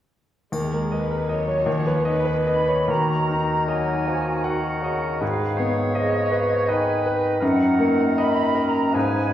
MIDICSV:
0, 0, Header, 1, 8, 480
1, 0, Start_track
1, 0, Key_signature, -6, "minor"
1, 0, Tempo, 772201
1, 320, Time_signature, 3, 2, 24, 8
1, 1272, Tempo, 816327
1, 2232, Tempo, 771208
1, 2712, Tempo, 741656
1, 5112, Tempo, 796813
1, 5820, End_track
2, 0, Start_track
2, 0, Title_t, "Flute section"
2, 0, Program_c, 0, 73
2, 1521, Note_on_c, 0, 83, 57
2, 1747, Note_off_c, 0, 83, 0
2, 1766, Note_on_c, 0, 82, 57
2, 2234, Note_on_c, 0, 80, 53
2, 2235, Note_off_c, 0, 82, 0
2, 2713, Note_off_c, 0, 80, 0
2, 2714, Note_on_c, 0, 78, 52
2, 3206, Note_on_c, 0, 77, 56
2, 3208, Note_off_c, 0, 78, 0
2, 3678, Note_off_c, 0, 77, 0
2, 3682, Note_on_c, 0, 75, 53
2, 3938, Note_off_c, 0, 75, 0
2, 3946, Note_on_c, 0, 77, 45
2, 3995, Note_on_c, 0, 75, 47
2, 3999, Note_off_c, 0, 77, 0
2, 4051, Note_off_c, 0, 75, 0
2, 4059, Note_on_c, 0, 73, 45
2, 4110, Note_off_c, 0, 73, 0
2, 4120, Note_on_c, 0, 75, 44
2, 4169, Note_off_c, 0, 75, 0
2, 4174, Note_on_c, 0, 80, 52
2, 4403, Note_off_c, 0, 80, 0
2, 4639, Note_on_c, 0, 78, 64
2, 5091, Note_off_c, 0, 78, 0
2, 5119, Note_on_c, 0, 83, 69
2, 5421, Note_on_c, 0, 82, 56
2, 5428, Note_off_c, 0, 83, 0
2, 5585, Note_off_c, 0, 82, 0
2, 5591, Note_on_c, 0, 80, 65
2, 5820, Note_off_c, 0, 80, 0
2, 5820, End_track
3, 0, Start_track
3, 0, Title_t, "Grand piano"
3, 0, Program_c, 1, 0
3, 325, Note_on_c, 1, 39, 34
3, 425, Control_c, 1, 64, 127
3, 455, Note_on_c, 1, 70, 31
3, 569, Note_on_c, 1, 75, 31
3, 642, Note_off_c, 1, 70, 0
3, 687, Note_on_c, 1, 70, 31
3, 757, Note_off_c, 1, 75, 0
3, 802, Note_on_c, 1, 75, 35
3, 873, Note_off_c, 1, 70, 0
3, 917, Note_on_c, 1, 73, 28
3, 988, Note_off_c, 1, 75, 0
3, 1015, Note_off_c, 1, 39, 0
3, 1033, Note_off_c, 1, 73, 0
3, 1034, Note_on_c, 1, 39, 46
3, 1045, Control_c, 1, 64, 0
3, 1131, Control_c, 1, 64, 127
3, 1160, Note_on_c, 1, 71, 42
3, 1275, Note_on_c, 1, 75, 47
3, 1348, Note_off_c, 1, 71, 0
3, 1391, Note_on_c, 1, 71, 40
3, 1467, Note_off_c, 1, 75, 0
3, 1520, Note_on_c, 1, 75, 35
3, 1591, Note_off_c, 1, 71, 0
3, 1645, Note_on_c, 1, 73, 30
3, 1716, Note_off_c, 1, 75, 0
3, 1740, Note_off_c, 1, 39, 0
3, 1763, Note_on_c, 1, 39, 40
3, 1764, Note_off_c, 1, 73, 0
3, 1773, Control_c, 1, 64, 0
3, 1889, Control_c, 1, 64, 127
3, 2009, Note_on_c, 1, 63, 35
3, 2233, Note_on_c, 1, 75, 34
3, 2384, Note_off_c, 1, 63, 0
3, 2481, Note_on_c, 1, 66, 35
3, 2618, Note_off_c, 1, 75, 0
3, 2706, Note_on_c, 1, 78, 39
3, 2864, Note_off_c, 1, 66, 0
3, 2964, Note_on_c, 1, 75, 34
3, 3105, Note_off_c, 1, 78, 0
3, 3182, Note_off_c, 1, 39, 0
3, 3206, Note_on_c, 1, 44, 43
3, 3209, Note_off_c, 1, 75, 0
3, 3217, Control_c, 1, 64, 0
3, 3338, Control_c, 1, 64, 127
3, 3452, Note_on_c, 1, 59, 37
3, 3683, Note_on_c, 1, 75, 40
3, 3832, Note_off_c, 1, 59, 0
3, 3920, Note_on_c, 1, 71, 37
3, 4065, Note_off_c, 1, 75, 0
3, 4159, Note_on_c, 1, 75, 48
3, 4300, Note_off_c, 1, 71, 0
3, 4402, Note_on_c, 1, 71, 39
3, 4536, Note_off_c, 1, 75, 0
3, 4606, Note_off_c, 1, 44, 0
3, 4634, Note_on_c, 1, 42, 50
3, 4635, Note_off_c, 1, 71, 0
3, 4644, Control_c, 1, 64, 0
3, 4728, Control_c, 1, 64, 127
3, 4873, Note_on_c, 1, 58, 45
3, 5125, Note_on_c, 1, 75, 46
3, 5253, Note_off_c, 1, 58, 0
3, 5347, Note_on_c, 1, 70, 42
3, 5495, Note_off_c, 1, 75, 0
3, 5564, Note_off_c, 1, 42, 0
3, 5587, Note_off_c, 1, 70, 0
3, 5588, Note_on_c, 1, 44, 48
3, 5598, Control_c, 1, 64, 0
3, 5717, Control_c, 1, 64, 127
3, 5820, Note_off_c, 1, 44, 0
3, 5820, End_track
4, 0, Start_track
4, 0, Title_t, "Oboe"
4, 0, Program_c, 2, 68
4, 1758, Note_on_c, 2, 70, 37
4, 1980, Note_off_c, 2, 70, 0
4, 1998, Note_on_c, 2, 70, 43
4, 2697, Note_off_c, 2, 70, 0
4, 2710, Note_on_c, 2, 70, 38
4, 3201, Note_on_c, 2, 71, 37
4, 3211, Note_off_c, 2, 70, 0
4, 3439, Note_on_c, 2, 73, 46
4, 3449, Note_off_c, 2, 71, 0
4, 4157, Note_on_c, 2, 71, 44
4, 4167, Note_off_c, 2, 73, 0
4, 4615, Note_off_c, 2, 71, 0
4, 4619, Note_on_c, 2, 70, 45
4, 5581, Note_on_c, 2, 71, 45
4, 5590, Note_off_c, 2, 70, 0
4, 5820, Note_off_c, 2, 71, 0
4, 5820, End_track
5, 0, Start_track
5, 0, Title_t, "Clarinet"
5, 0, Program_c, 3, 71
5, 1766, Note_on_c, 3, 66, 36
5, 2211, Note_off_c, 3, 66, 0
5, 2232, Note_on_c, 3, 63, 36
5, 2702, Note_off_c, 3, 63, 0
5, 2710, Note_on_c, 3, 66, 34
5, 3207, Note_on_c, 3, 68, 38
5, 3216, Note_off_c, 3, 66, 0
5, 3682, Note_off_c, 3, 68, 0
5, 3686, Note_on_c, 3, 68, 39
5, 4168, Note_on_c, 3, 63, 41
5, 4178, Note_off_c, 3, 68, 0
5, 4623, Note_off_c, 3, 63, 0
5, 4627, Note_on_c, 3, 63, 43
5, 5560, Note_off_c, 3, 63, 0
5, 5592, Note_on_c, 3, 63, 39
5, 5820, Note_off_c, 3, 63, 0
5, 5820, End_track
6, 0, Start_track
6, 0, Title_t, "Viola section"
6, 0, Program_c, 4, 48
6, 327, Note_on_c, 4, 70, 33
6, 330, Note_on_c, 4, 56, 31
6, 551, Note_off_c, 4, 70, 0
6, 574, Note_on_c, 4, 71, 34
6, 781, Note_off_c, 4, 56, 0
6, 805, Note_on_c, 4, 54, 37
6, 806, Note_off_c, 4, 71, 0
6, 807, Note_on_c, 4, 73, 34
6, 1036, Note_off_c, 4, 54, 0
6, 1037, Note_on_c, 4, 53, 43
6, 1274, Note_off_c, 4, 53, 0
6, 1275, Note_on_c, 4, 71, 45
6, 1276, Note_off_c, 4, 73, 0
6, 1276, Note_on_c, 4, 51, 43
6, 1631, Note_off_c, 4, 71, 0
6, 1632, Note_off_c, 4, 51, 0
6, 5820, End_track
7, 0, Start_track
7, 0, Title_t, "Bassoon"
7, 0, Program_c, 5, 70
7, 1764, Note_on_c, 5, 51, 35
7, 2236, Note_on_c, 5, 54, 36
7, 2246, Note_off_c, 5, 51, 0
7, 2475, Note_on_c, 5, 53, 39
7, 2485, Note_off_c, 5, 54, 0
7, 2710, Note_on_c, 5, 51, 35
7, 2720, Note_off_c, 5, 53, 0
7, 2957, Note_on_c, 5, 49, 36
7, 2967, Note_off_c, 5, 51, 0
7, 3195, Note_off_c, 5, 49, 0
7, 3199, Note_on_c, 5, 51, 39
7, 3685, Note_on_c, 5, 53, 41
7, 3695, Note_off_c, 5, 51, 0
7, 4154, Note_on_c, 5, 51, 41
7, 4164, Note_off_c, 5, 53, 0
7, 4624, Note_off_c, 5, 51, 0
7, 4628, Note_on_c, 5, 51, 46
7, 5581, Note_on_c, 5, 53, 44
7, 5590, Note_off_c, 5, 51, 0
7, 5820, Note_off_c, 5, 53, 0
7, 5820, End_track
8, 0, Start_track
8, 0, Title_t, "Drums"
8, 329, Note_on_c, 9, 81, 21
8, 391, Note_off_c, 9, 81, 0
8, 5820, End_track
0, 0, End_of_file